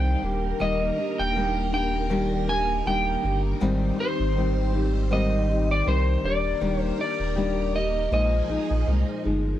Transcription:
0.00 0.16 C2 medium
0.00 0.20 D#3 medium
0.00 0.23 D#3 medium
0.00 0.20 G3 medium
0.00 0.23 G3 medium
0.00 0.20 C4 medium
0.00 0.23 C4 medium
0.00 0.22 D#4 medium
0.00 0.21 C5 medium
0.00 0.63 G5 loud
0.22 0.53 D#1 loud
0.22 8.07 D#3 medium
0.22 0.59 G3 soft
0.22 3.57 A#3 medium
0.22 0.60 A#3 medium
0.22 0.60 D4 soft
0.22 3.57 A#4 medium
0.60 0.91 D#1 loud
0.60 0.98 D#3 medium
0.60 0.98 G3 medium
0.60 0.97 A#3 medium
0.60 1.21 D#5 medium
0.97 1.35 G3 soft
0.97 1.36 A#3 soft
0.97 1.35 D4 soft
1.19 2.82 D#1 medium
1.19 1.73 G5 loud
1.35 1.73 D#3 medium
1.35 1.73 G3 medium
1.35 1.73 A#3 medium
1.35 1.71 D4 medium
1.72 2.09 G3 soft
1.72 2.10 A#3 soft
1.72 2.10 D4 medium
1.72 2.49 G5 loud
2.10 2.48 D#3 medium
2.10 2.48 G3 medium
2.10 2.48 A#3 medium
2.10 2.47 D4 medium
2.48 2.85 G3 soft
2.48 2.86 A#3 medium
2.48 2.86 D4 medium
2.48 2.87 G#5 loud
2.85 3.16 D#1 loud
2.85 3.23 D#3 medium
2.85 3.24 G3 medium
2.85 3.23 A#3 medium
2.85 3.21 D4 medium
2.85 3.41 G5 loud
3.23 3.54 G1 medium
3.23 3.60 G3 soft
3.23 3.61 A#3 soft
3.23 3.61 D4 medium
3.60 3.92 G#1 loud
3.60 3.98 G#2 medium
3.60 3.98 D#3 medium
3.60 6.21 G3 medium
3.60 3.99 G3 loud
3.60 6.21 C4 medium
3.60 3.98 C4 loud
3.60 3.97 D#4 loud
3.60 6.21 C5 medium
3.98 4.35 G3 soft
3.98 4.36 C4 soft
3.98 4.36 D#4 medium
3.98 5.15 C5 medium
4.20 5.83 G#1 medium
4.36 4.73 D#3 medium
4.36 4.74 G3 medium
4.36 4.73 C4 medium
4.36 4.72 D#4 medium
4.73 5.10 G3 soft
4.73 5.11 C4 soft
4.73 5.11 D#4 medium
5.10 5.48 G#2 medium
5.10 5.49 D#3 medium
5.10 5.49 G3 medium
5.10 5.48 C4 medium
5.10 5.46 D#4 medium
5.10 5.71 D#5 loud
5.48 5.85 G3 soft
5.48 5.86 C4 medium
5.48 5.86 D#4 medium
5.71 5.88 D5 loud
5.86 6.17 C2 medium
5.86 6.23 D#3 medium
5.86 6.24 G3 medium
5.86 6.24 C4 medium
5.86 6.23 D#4 medium
5.86 6.26 C5 loud
6.23 6.54 D#1 loud
6.23 6.60 G3 soft
6.23 9.59 A#3 medium
6.23 6.60 A#3 soft
6.23 6.61 D4 medium
6.23 8.10 G4 medium
6.23 9.59 A#4 medium
6.23 6.81 D5 loud
6.61 6.92 D#1 loud
6.61 6.99 D#3 medium
6.61 6.99 G3 medium
6.61 6.98 A#3 medium
6.61 6.97 D4 medium
6.81 7.00 C5 loud
6.98 7.35 G3 soft
6.98 7.36 A#3 soft
6.98 7.36 D4 medium
6.98 7.75 D5 medium
7.20 8.08 D#1 medium
7.35 7.74 D#3 medium
7.35 7.74 G3 medium
7.35 7.74 A#3 medium
7.35 7.75 D4 medium
7.75 8.12 G3 soft
7.75 8.12 A#3 soft
7.75 8.12 D#5 loud
8.11 8.42 A#1 loud
8.11 8.49 A#2 medium
8.11 9.60 F3 medium
8.11 8.49 F3 medium
8.11 8.49 G#3 medium
8.11 9.60 D#4 medium
8.11 8.48 D#4 medium
8.11 9.60 G#4 medium
8.11 9.21 D#5 medium
8.49 8.58 A#1 soft
8.49 8.86 F3 soft
8.49 8.86 G#3 soft
8.49 8.87 D#4 medium
8.71 8.84 A#1 medium
8.86 9.04 C2 medium
8.86 9.24 A#2 medium
8.86 9.25 F3 medium
8.86 9.24 G#3 medium
8.86 9.22 D#4 medium
9.24 9.55 G1 loud
9.24 9.60 F3 soft
9.24 9.60 G#3 medium
9.24 9.60 D#4 medium

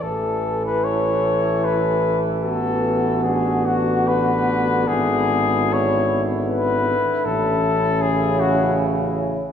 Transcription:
0.02 4.85 A1 soft
0.02 3.26 E3 soft
0.02 2.40 E4 soft
0.02 2.40 A4 soft
0.02 0.65 A4 medium
0.66 0.86 B4 medium
0.84 1.66 C#5 medium
1.65 2.27 B4 medium
2.44 6.96 B3 soft
2.44 4.85 F#4 soft
2.44 3.22 A4 medium
3.24 7.75 D3 soft
3.24 3.67 G#4 medium
3.66 4.10 F#4 medium
4.08 4.89 B4 medium
4.88 6.95 G#1 medium
4.88 9.37 E4 medium
4.88 5.75 G#4 medium
5.74 6.24 C#5 medium
6.50 7.27 B4 medium
7.25 9.51 A1 medium
7.25 9.51 C#4 medium
7.25 8.03 A4 medium
8.02 9.51 C#3 medium
8.02 8.42 G#4 medium
8.40 8.78 F#4 medium

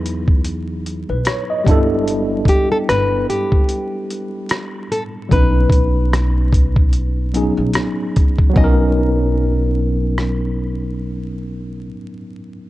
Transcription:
0.00 1.03 E2 loud
0.00 1.62 F#3 medium
0.00 1.62 B3 medium
0.00 1.63 D#4 medium
0.00 1.64 E4 medium
0.00 1.68 G#4 medium
0.00 0.41 B4 medium
0.06 closed hi-hat medium
0.28 kick medium
0.45 closed hi-hat medium
0.86 closed hi-hat medium
1.09 1.24 B1 medium
1.09 1.26 B4 medium
1.25 1.48 C#5 medium
1.25 cross-stick loud
1.25 closed hi-hat medium
1.50 1.88 D#5 medium
1.64 2.55 G1 medium
1.64 4.86 G3 medium
1.64 4.87 B3 medium
1.64 4.87 D4 medium
1.64 kick loud
1.64 closed hi-hat medium
1.69 4.88 E4 medium
1.69 4.89 A4 medium
2.08 closed hi-hat medium
2.45 2.71 G4 medium
2.45 kick medium
2.45 closed hi-hat medium
2.72 2.77 A4 medium
2.89 3.23 G1 medium
2.89 3.29 B4 loud
2.89 cross-stick loud
2.89 closed hi-hat medium
3.30 4.91 G4 medium
3.30 closed hi-hat medium
3.52 kick medium
3.69 closed hi-hat medium
4.11 closed hi-hat medium
4.49 cross-stick loud
4.49 closed hi-hat medium
4.92 5.02 A4 medium
4.92 closed hi-hat medium
5.29 5.66 B1 loud
5.29 7.29 F#3 medium
5.29 7.30 B3 medium
5.29 7.30 C#4 medium
5.29 8.12 B4 medium
5.29 kick loud
5.29 closed hi-hat medium
5.34 7.31 D#4 medium
5.34 7.32 B4 medium
5.70 7.52 B1 medium
5.70 kick loud
5.70 closed hi-hat medium
6.13 cross-stick medium
6.13 closed hi-hat medium
6.53 kick medium
6.53 closed hi-hat medium
6.76 kick loud
6.93 closed hi-hat medium
7.34 8.48 F#3 medium
7.34 8.52 B3 medium
7.34 8.56 C#4 medium
7.34 8.57 D#4 medium
7.34 8.57 G#4 medium
7.34 closed hi-hat medium
7.57 7.72 B1 medium
7.74 cross-stick loud
7.74 closed hi-hat medium
8.16 kick loud
8.16 closed hi-hat medium
8.38 kick medium
8.50 11.81 F#3 medium
8.50 11.85 B3 medium
8.56 11.87 B1 loud
8.56 11.88 C#4 medium
8.56 11.89 D#5 medium
8.56 kick loud
8.60 11.92 D#4 medium
8.60 11.95 A#4 medium
10.18 cross-stick medium

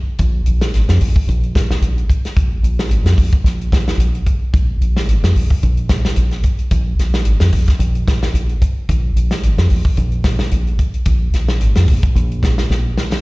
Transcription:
0.19 0.41 A#1 loud
0.19 kick medium
0.19 closed hi-hat medium
0.46 0.74 A#1 medium
0.46 closed hi-hat medium
0.61 snare medium
0.74 0.86 G#1 medium
0.74 snare soft
0.74 closed hi-hat medium
0.88 0.98 F2 medium
0.88 snare medium
1.01 1.12 A#1 medium
1.01 open hi-hat medium
1.16 kick medium
1.28 1.71 A#1 loud
1.28 closed hi-hat medium
1.43 closed hi-hat soft
1.55 kick medium
1.55 snare medium
1.55 closed hi-hat soft
1.71 snare medium
1.81 2.03 A#1 medium
1.81 closed hi-hat medium
1.98 closed hi-hat soft
2.10 kick medium
2.10 closed hi-hat soft
2.25 snare soft
2.25 closed hi-hat soft
2.36 2.58 A#1 medium
2.36 kick medium
2.36 closed hi-hat medium
2.63 2.89 A#1 medium
2.63 closed hi-hat medium
2.79 snare medium
2.89 3.01 G#1 medium
2.89 closed hi-hat medium
3.04 3.14 F2 medium
3.04 snare medium
3.04 closed hi-hat soft
3.17 3.29 A#1 medium
3.17 kick medium
3.17 open hi-hat medium
3.33 kick medium
3.33 closed hi-hat soft
3.44 3.87 A#1 loud
3.44 snare soft
3.44 closed hi-hat medium
3.61 closed hi-hat soft
3.72 kick medium
3.72 snare medium
3.72 closed hi-hat soft
3.88 snare medium
3.97 4.19 A#1 medium
3.97 closed hi-hat medium
4.15 closed hi-hat soft
4.26 kick medium
4.26 closed hi-hat soft
4.53 4.75 A#1 medium
4.53 kick medium
4.53 closed hi-hat medium
4.81 5.07 A#1 medium
4.81 closed hi-hat medium
4.97 snare medium
5.07 5.19 G#1 medium
5.07 closed hi-hat medium
5.23 5.33 F2 medium
5.23 snare medium
5.35 5.47 A#1 medium
5.35 open hi-hat medium
5.50 kick medium
5.63 6.05 A#1 loud
5.63 closed hi-hat medium
5.77 closed hi-hat soft
5.89 kick medium
5.89 snare medium
5.89 closed hi-hat soft
6.05 snare medium
6.16 6.38 A#1 medium
6.16 closed hi-hat medium
6.31 snare soft
6.31 closed hi-hat soft
6.43 kick medium
6.43 closed hi-hat soft
6.59 closed hi-hat soft
6.71 6.93 A#1 loud
6.71 kick medium
6.71 closed hi-hat medium
6.99 7.25 A#1 medium
6.99 snare soft
6.99 closed hi-hat medium
7.14 snare medium
7.25 7.37 G#1 medium
7.25 closed hi-hat medium
7.40 7.50 F2 medium
7.40 snare medium
7.40 closed hi-hat soft
7.53 7.65 A#1 medium
7.53 kick medium
7.53 open hi-hat medium
7.68 kick medium
7.68 snare soft
7.68 closed hi-hat soft
7.79 8.22 A#1 loud
7.79 closed hi-hat medium
7.95 closed hi-hat soft
8.08 kick medium
8.08 snare medium
8.08 closed hi-hat soft
8.23 snare medium
8.33 8.55 A#1 medium
8.33 closed hi-hat medium
8.49 closed hi-hat soft
8.62 kick medium
8.62 closed hi-hat medium
8.89 9.10 A#1 medium
8.89 kick medium
8.89 closed hi-hat medium
9.16 9.43 A#1 medium
9.16 closed hi-hat medium
9.31 snare medium
9.43 9.55 G#1 medium
9.43 closed hi-hat medium
9.58 9.67 F2 medium
9.58 snare medium
9.70 9.82 A#1 medium
9.70 open hi-hat medium
9.85 kick medium
9.97 10.40 A#1 loud
9.97 closed hi-hat medium
10.12 closed hi-hat soft
10.24 kick medium
10.24 snare medium
10.24 closed hi-hat soft
10.39 snare medium
10.51 10.73 A#1 medium
10.51 closed hi-hat medium
10.67 closed hi-hat soft
10.79 kick medium
10.79 closed hi-hat soft
10.94 closed hi-hat soft
11.05 11.27 A#1 medium
11.05 kick medium
11.05 closed hi-hat medium
11.34 11.62 A#1 medium
11.34 snare soft
11.34 closed hi-hat medium
11.49 snare medium
11.61 11.73 G#1 medium
11.61 closed hi-hat medium
11.75 11.85 F2 medium
11.75 snare medium
11.75 closed hi-hat soft
11.88 12.00 A#1 medium
11.88 kick medium
11.88 open hi-hat medium
12.03 kick medium
12.03 closed hi-hat soft
12.15 12.58 A#1 loud
12.15 closed hi-hat medium
12.32 closed hi-hat soft
12.43 kick medium
12.43 snare medium
12.43 closed hi-hat medium
12.58 snare medium
12.70 12.91 A#1 medium
12.70 snare soft
12.98 snare medium
13.12 snare medium

